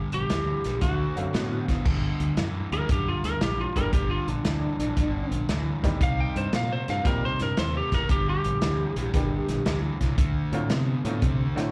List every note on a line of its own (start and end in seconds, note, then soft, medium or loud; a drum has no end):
0.00 0.27 G2 medium
0.00 0.27 D3 medium
0.12 0.24 A#1 medium
0.12 0.82 G4 loud
0.12 closed hi-hat medium
0.30 0.53 D2 medium
0.30 0.62 G2 medium
0.30 0.62 E3 medium
0.30 snare loud
0.30 closed hi-hat medium
0.64 0.77 A#1 medium
0.64 0.81 G2 medium
0.64 0.81 E3 medium
0.64 snare soft
0.64 closed hi-hat medium
0.81 1.05 D2 medium
0.81 1.30 D3 medium
0.81 1.31 A3 medium
0.81 1.65 F#4 medium
0.81 kick loud
0.81 snare soft
0.81 closed hi-hat medium
1.16 1.28 F#2 medium
1.16 1.82 F#3 medium
1.16 1.82 A3 medium
1.16 1.82 C4 medium
1.16 1.83 F5 medium
1.16 closed hi-hat medium
1.33 1.57 A2 medium
1.33 1.65 D3 medium
1.33 1.65 B3 medium
1.33 snare loud
1.33 closed hi-hat medium
1.68 1.80 F#1 medium
1.68 1.84 D3 medium
1.68 1.84 B3 medium
1.68 kick medium
1.68 snare soft
1.68 closed hi-hat medium
1.84 2.09 G1 medium
1.84 2.34 G2 medium
1.84 2.34 D3 medium
1.84 kick loud
1.84 crash loud
2.20 2.31 D2 medium
2.20 closed hi-hat medium
2.37 2.60 F#2 medium
2.37 2.69 G2 medium
2.37 2.69 E3 medium
2.37 snare loud
2.37 closed hi-hat medium
2.72 2.83 D2 medium
2.72 2.88 G2 medium
2.72 2.88 E3 medium
2.72 2.90 A#4 medium
2.72 closed hi-hat medium
2.89 3.13 F#2 medium
2.89 3.38 G2 medium
2.89 3.39 D3 medium
2.89 3.08 G4 medium
2.89 kick loud
2.89 closed hi-hat medium
3.08 3.24 F4 medium
3.24 3.35 D2 medium
3.24 3.42 A#4 medium
3.24 snare soft
3.24 closed hi-hat medium
3.41 3.65 A#1 medium
3.41 3.73 G2 medium
3.41 3.73 E3 medium
3.41 3.59 G4 medium
3.41 snare loud
3.41 closed hi-hat medium
3.61 3.77 F4 medium
3.75 3.87 G1 medium
3.75 3.92 G2 medium
3.75 3.91 D3 medium
3.75 3.92 E3 medium
3.75 3.91 G3 medium
3.75 3.92 A#3 medium
3.75 3.92 D4 medium
3.75 3.92 G4 medium
3.75 3.93 A#4 loud
3.75 kick medium
3.75 closed hi-hat medium
3.93 4.16 G1 medium
3.93 4.42 G2 medium
3.93 4.42 D3 medium
3.93 4.10 G4 medium
3.93 kick loud
3.93 closed hi-hat medium
4.11 4.29 F4 medium
4.28 4.39 A#1 medium
4.28 5.29 D4 medium
4.28 closed hi-hat medium
4.44 4.68 D2 medium
4.44 4.77 G2 medium
4.44 4.77 E3 medium
4.44 snare loud
4.44 closed hi-hat medium
4.79 4.91 A#1 medium
4.79 4.96 G2 medium
4.79 4.96 E3 medium
4.79 closed hi-hat medium
4.97 5.20 G1 medium
4.97 5.46 G2 medium
4.97 5.47 D3 medium
4.97 kick loud
4.97 closed hi-hat medium
5.31 5.43 A#1 medium
5.31 closed hi-hat medium
5.49 5.72 D2 medium
5.49 5.81 G2 medium
5.49 5.81 E3 medium
5.49 snare loud
5.49 closed hi-hat medium
5.83 5.95 D#2 medium
5.83 6.00 G2 medium
5.83 6.49 D#3 medium
5.83 6.00 E3 medium
5.83 6.50 G3 medium
5.83 6.50 C4 medium
5.83 6.50 D#4 medium
5.83 6.50 G4 medium
5.83 kick medium
5.83 snare soft
5.83 closed hi-hat medium
6.00 6.24 C2 medium
6.00 6.50 C3 medium
6.00 6.50 G3 loud
6.00 6.19 F5 loud
6.00 kick loud
6.00 closed hi-hat medium
6.20 6.37 G5 medium
6.36 6.47 G2 medium
6.36 6.54 C5 medium
6.36 closed hi-hat medium
6.53 6.76 A#2 medium
6.53 6.85 C3 medium
6.53 6.85 A3 medium
6.53 6.71 F5 medium
6.53 snare loud
6.53 closed hi-hat medium
6.72 6.89 C5 medium
6.88 7.00 G2 medium
6.88 7.04 C3 medium
6.88 7.04 A3 medium
6.88 7.06 F5 medium
6.88 snare soft
6.88 closed hi-hat medium
7.04 7.28 A#2 medium
7.04 7.54 C3 medium
7.04 7.36 D#3 medium
7.04 7.37 G3 medium
7.04 7.54 G3 medium
7.04 7.37 C4 medium
7.04 7.37 D#4 medium
7.04 7.37 G4 medium
7.04 7.25 A#4 medium
7.04 kick loud
7.04 snare soft
7.04 closed hi-hat medium
7.25 7.41 C5 medium
7.39 7.52 G2 medium
7.39 7.59 A#4 medium
7.39 snare soft
7.39 closed hi-hat medium
7.57 7.81 D#2 medium
7.57 7.89 C3 medium
7.57 7.89 A3 loud
7.57 7.75 C5 medium
7.57 snare loud
7.57 closed hi-hat medium
7.77 7.94 G4 medium
7.92 8.04 F#1 medium
7.92 8.08 C3 medium
7.92 8.09 A3 medium
7.92 8.10 A#4 medium
7.92 kick medium
7.92 snare soft
7.92 closed hi-hat medium
8.09 8.33 G1 medium
8.09 8.58 G2 medium
8.09 8.59 D3 medium
8.09 8.27 G4 medium
8.09 kick loud
8.09 closed hi-hat medium
8.30 9.81 G4 medium
8.44 8.57 A#1 medium
8.44 closed hi-hat medium
8.62 8.86 D2 medium
8.62 8.93 G2 medium
8.62 8.94 E3 medium
8.62 snare loud
8.62 closed hi-hat medium
8.96 9.08 A#1 medium
8.96 9.12 G2 medium
8.96 9.12 E3 medium
8.96 closed hi-hat medium
9.13 9.37 G1 medium
9.13 9.62 G2 medium
9.13 9.63 D3 medium
9.13 9.45 D3 medium
9.13 9.45 G3 medium
9.13 9.46 A#3 soft
9.13 9.46 D4 medium
9.13 9.46 G4 medium
9.13 kick loud
9.13 snare soft
9.13 closed hi-hat medium
9.48 9.60 A#1 medium
9.48 snare soft
9.48 closed hi-hat medium
9.65 9.90 D2 medium
9.65 9.97 G2 medium
9.65 9.97 E3 medium
9.65 snare loud
9.65 closed hi-hat medium
10.01 10.12 C2 medium
10.01 10.16 G2 medium
10.01 10.17 E3 medium
10.01 kick medium
10.01 snare soft
10.01 closed hi-hat medium
10.18 10.41 D2 medium
10.18 10.67 D3 medium
10.18 10.67 A3 medium
10.18 kick loud
10.18 closed hi-hat medium
10.52 10.64 A2 medium
10.52 10.68 D3 medium
10.52 10.68 F#3 medium
10.52 10.69 A3 medium
10.52 10.69 C4 medium
10.52 10.69 F4 medium
10.52 closed hi-hat medium
10.70 10.93 C3 medium
10.70 11.02 D3 medium
10.70 11.02 B3 medium
10.70 snare loud
10.70 closed hi-hat medium
11.04 11.16 A2 medium
11.04 11.20 D3 medium
11.04 11.20 F#3 medium
11.04 11.21 A3 medium
11.04 11.21 B3 medium
11.04 11.21 C4 medium
11.04 11.21 F4 medium
11.04 closed hi-hat medium
11.22 11.45 C3 medium
11.22 11.71 D3 medium
11.22 11.71 A3 medium
11.22 kick loud
11.22 closed hi-hat medium
11.55 11.68 A2 medium
11.55 11.71 D3 medium
11.55 11.71 F#3 medium
11.55 11.71 A3 medium
11.55 11.71 C4 medium
11.55 11.71 F#4 medium
11.55 snare soft
11.55 closed hi-hat medium